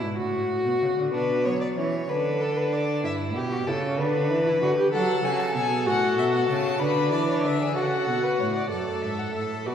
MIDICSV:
0, 0, Header, 1, 5, 480
1, 0, Start_track
1, 0, Key_signature, 2, "minor"
1, 0, Tempo, 632911
1, 862, Time_signature, 6, 3, 24, 8
1, 7394, End_track
2, 0, Start_track
2, 0, Title_t, "Violin"
2, 0, Program_c, 0, 40
2, 3742, Note_on_c, 0, 78, 94
2, 3978, Note_on_c, 0, 80, 90
2, 3989, Note_off_c, 0, 78, 0
2, 4095, Note_on_c, 0, 81, 88
2, 4107, Note_off_c, 0, 80, 0
2, 4209, Note_off_c, 0, 81, 0
2, 4213, Note_on_c, 0, 80, 90
2, 4446, Note_off_c, 0, 80, 0
2, 4454, Note_on_c, 0, 78, 91
2, 4685, Note_off_c, 0, 78, 0
2, 4694, Note_on_c, 0, 76, 88
2, 4740, Note_off_c, 0, 76, 0
2, 4805, Note_on_c, 0, 78, 84
2, 4916, Note_off_c, 0, 78, 0
2, 4921, Note_on_c, 0, 81, 89
2, 5159, Note_on_c, 0, 83, 90
2, 5170, Note_off_c, 0, 81, 0
2, 5389, Note_off_c, 0, 83, 0
2, 5394, Note_on_c, 0, 74, 83
2, 5634, Note_off_c, 0, 74, 0
2, 5639, Note_on_c, 0, 76, 84
2, 5873, Note_off_c, 0, 76, 0
2, 5878, Note_on_c, 0, 78, 85
2, 6589, Note_off_c, 0, 78, 0
2, 6600, Note_on_c, 0, 74, 63
2, 6844, Note_on_c, 0, 76, 66
2, 6855, Note_off_c, 0, 74, 0
2, 6967, Note_on_c, 0, 78, 59
2, 6978, Note_off_c, 0, 76, 0
2, 7083, Note_off_c, 0, 78, 0
2, 7088, Note_on_c, 0, 76, 59
2, 7330, Note_on_c, 0, 74, 63
2, 7341, Note_off_c, 0, 76, 0
2, 7394, Note_off_c, 0, 74, 0
2, 7394, End_track
3, 0, Start_track
3, 0, Title_t, "Violin"
3, 0, Program_c, 1, 40
3, 859, Note_on_c, 1, 71, 76
3, 1099, Note_on_c, 1, 73, 79
3, 1111, Note_off_c, 1, 71, 0
3, 1216, Note_off_c, 1, 73, 0
3, 1220, Note_on_c, 1, 74, 63
3, 1270, Note_off_c, 1, 74, 0
3, 1346, Note_on_c, 1, 73, 75
3, 1586, Note_on_c, 1, 71, 81
3, 1597, Note_off_c, 1, 73, 0
3, 1824, Note_on_c, 1, 69, 74
3, 1836, Note_off_c, 1, 71, 0
3, 1946, Note_on_c, 1, 71, 76
3, 1957, Note_off_c, 1, 69, 0
3, 2071, Note_on_c, 1, 74, 78
3, 2082, Note_off_c, 1, 71, 0
3, 2304, Note_off_c, 1, 74, 0
3, 2308, Note_on_c, 1, 76, 82
3, 2369, Note_off_c, 1, 76, 0
3, 2541, Note_on_c, 1, 67, 85
3, 2783, Note_on_c, 1, 69, 81
3, 2794, Note_off_c, 1, 67, 0
3, 3021, Note_off_c, 1, 69, 0
3, 3026, Note_on_c, 1, 71, 88
3, 3728, Note_off_c, 1, 71, 0
3, 3739, Note_on_c, 1, 69, 77
3, 3972, Note_off_c, 1, 69, 0
3, 3983, Note_on_c, 1, 66, 77
3, 4212, Note_off_c, 1, 66, 0
3, 4218, Note_on_c, 1, 68, 76
3, 4455, Note_on_c, 1, 69, 78
3, 4467, Note_off_c, 1, 68, 0
3, 5157, Note_off_c, 1, 69, 0
3, 5162, Note_on_c, 1, 71, 78
3, 5515, Note_off_c, 1, 71, 0
3, 5524, Note_on_c, 1, 73, 63
3, 5644, Note_on_c, 1, 71, 68
3, 5656, Note_off_c, 1, 73, 0
3, 5758, Note_off_c, 1, 71, 0
3, 5763, Note_on_c, 1, 68, 64
3, 5881, Note_on_c, 1, 69, 65
3, 5893, Note_off_c, 1, 68, 0
3, 6244, Note_on_c, 1, 71, 61
3, 6255, Note_off_c, 1, 69, 0
3, 6365, Note_off_c, 1, 71, 0
3, 6369, Note_on_c, 1, 73, 59
3, 6416, Note_off_c, 1, 73, 0
3, 6486, Note_on_c, 1, 74, 61
3, 6598, Note_off_c, 1, 74, 0
3, 6602, Note_on_c, 1, 69, 63
3, 7302, Note_off_c, 1, 69, 0
3, 7332, Note_on_c, 1, 71, 59
3, 7394, Note_off_c, 1, 71, 0
3, 7394, End_track
4, 0, Start_track
4, 0, Title_t, "Viola"
4, 0, Program_c, 2, 41
4, 0, Note_on_c, 2, 64, 73
4, 129, Note_off_c, 2, 64, 0
4, 134, Note_on_c, 2, 66, 89
4, 845, Note_off_c, 2, 66, 0
4, 861, Note_on_c, 2, 62, 63
4, 1107, Note_on_c, 2, 59, 58
4, 1118, Note_off_c, 2, 62, 0
4, 1340, Note_off_c, 2, 59, 0
4, 1344, Note_on_c, 2, 61, 57
4, 1405, Note_off_c, 2, 61, 0
4, 1587, Note_on_c, 2, 62, 70
4, 2306, Note_on_c, 2, 64, 72
4, 2318, Note_off_c, 2, 62, 0
4, 2659, Note_off_c, 2, 64, 0
4, 2664, Note_on_c, 2, 66, 71
4, 2712, Note_off_c, 2, 66, 0
4, 2789, Note_on_c, 2, 64, 59
4, 2836, Note_off_c, 2, 64, 0
4, 2909, Note_on_c, 2, 61, 64
4, 3031, Note_on_c, 2, 62, 77
4, 3042, Note_off_c, 2, 61, 0
4, 3389, Note_on_c, 2, 64, 70
4, 3400, Note_off_c, 2, 62, 0
4, 3501, Note_off_c, 2, 64, 0
4, 3506, Note_on_c, 2, 66, 73
4, 3621, Note_off_c, 2, 66, 0
4, 3626, Note_on_c, 2, 67, 71
4, 3734, Note_off_c, 2, 67, 0
4, 3738, Note_on_c, 2, 69, 87
4, 4450, Note_on_c, 2, 66, 83
4, 4462, Note_off_c, 2, 69, 0
4, 5155, Note_off_c, 2, 66, 0
4, 5160, Note_on_c, 2, 62, 86
4, 5869, Note_off_c, 2, 62, 0
4, 5883, Note_on_c, 2, 66, 75
4, 6592, Note_off_c, 2, 66, 0
4, 6608, Note_on_c, 2, 69, 64
4, 7334, Note_on_c, 2, 66, 62
4, 7345, Note_off_c, 2, 69, 0
4, 7394, Note_off_c, 2, 66, 0
4, 7394, End_track
5, 0, Start_track
5, 0, Title_t, "Cello"
5, 0, Program_c, 3, 42
5, 16, Note_on_c, 3, 44, 59
5, 132, Note_on_c, 3, 45, 66
5, 143, Note_off_c, 3, 44, 0
5, 491, Note_off_c, 3, 45, 0
5, 495, Note_on_c, 3, 47, 61
5, 544, Note_off_c, 3, 47, 0
5, 622, Note_on_c, 3, 49, 63
5, 670, Note_off_c, 3, 49, 0
5, 738, Note_on_c, 3, 50, 59
5, 856, Note_off_c, 3, 50, 0
5, 861, Note_on_c, 3, 47, 59
5, 1104, Note_on_c, 3, 54, 64
5, 1115, Note_off_c, 3, 47, 0
5, 1342, Note_off_c, 3, 54, 0
5, 1346, Note_on_c, 3, 52, 60
5, 1583, Note_off_c, 3, 52, 0
5, 1588, Note_on_c, 3, 50, 61
5, 2305, Note_on_c, 3, 43, 65
5, 2316, Note_off_c, 3, 50, 0
5, 2542, Note_on_c, 3, 47, 67
5, 2553, Note_off_c, 3, 43, 0
5, 2780, Note_off_c, 3, 47, 0
5, 2784, Note_on_c, 3, 49, 69
5, 3024, Note_on_c, 3, 50, 69
5, 3035, Note_off_c, 3, 49, 0
5, 3264, Note_on_c, 3, 52, 74
5, 3275, Note_off_c, 3, 50, 0
5, 3500, Note_off_c, 3, 52, 0
5, 3504, Note_on_c, 3, 50, 72
5, 3565, Note_off_c, 3, 50, 0
5, 3739, Note_on_c, 3, 54, 75
5, 3972, Note_off_c, 3, 54, 0
5, 3976, Note_on_c, 3, 49, 73
5, 4209, Note_on_c, 3, 47, 69
5, 4221, Note_off_c, 3, 49, 0
5, 4446, Note_on_c, 3, 45, 70
5, 4457, Note_off_c, 3, 47, 0
5, 4683, Note_on_c, 3, 47, 76
5, 4694, Note_off_c, 3, 45, 0
5, 4917, Note_off_c, 3, 47, 0
5, 4922, Note_on_c, 3, 49, 74
5, 5162, Note_on_c, 3, 50, 73
5, 5173, Note_off_c, 3, 49, 0
5, 5399, Note_on_c, 3, 52, 76
5, 5410, Note_off_c, 3, 50, 0
5, 5641, Note_on_c, 3, 50, 66
5, 5652, Note_off_c, 3, 52, 0
5, 5881, Note_on_c, 3, 49, 65
5, 5892, Note_off_c, 3, 50, 0
5, 6120, Note_off_c, 3, 49, 0
5, 6125, Note_on_c, 3, 47, 65
5, 6185, Note_off_c, 3, 47, 0
5, 6364, Note_on_c, 3, 45, 65
5, 6600, Note_off_c, 3, 45, 0
5, 6604, Note_on_c, 3, 42, 57
5, 6846, Note_on_c, 3, 44, 54
5, 6858, Note_off_c, 3, 42, 0
5, 7084, Note_off_c, 3, 44, 0
5, 7089, Note_on_c, 3, 45, 49
5, 7330, Note_on_c, 3, 47, 52
5, 7342, Note_off_c, 3, 45, 0
5, 7394, Note_off_c, 3, 47, 0
5, 7394, End_track
0, 0, End_of_file